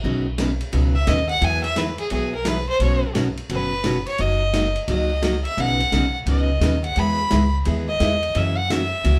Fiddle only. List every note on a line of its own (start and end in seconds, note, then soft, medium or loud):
0.95 1.10 E5 medium
1.08 1.28 D#5 medium
1.29 1.46 F#5 medium
1.44 1.63 G#5 loud
1.64 1.79 E5 loud
1.78 1.99 B4 medium
2.00 2.11 G#4 medium
2.14 2.33 G#4 medium
2.34 2.49 A#4 medium
2.48 2.68 B4 medium
2.69 2.80 C5 loud
2.83 3.14 C#5 medium
3.53 4.04 B4 medium
4.08 4.22 C#5 medium
4.21 4.77 D#5 medium
4.90 5.43 D#5 medium
5.44 5.62 E5 medium
5.60 6.16 F#5 loud
6.29 6.81 D#5 medium
6.84 7.01 F#5 medium
6.99 7.55 B5 medium
7.88 8.38 D#5 loud
8.37 8.59 E5 medium
8.57 8.72 F#5 loud
8.71 9.19 E5 medium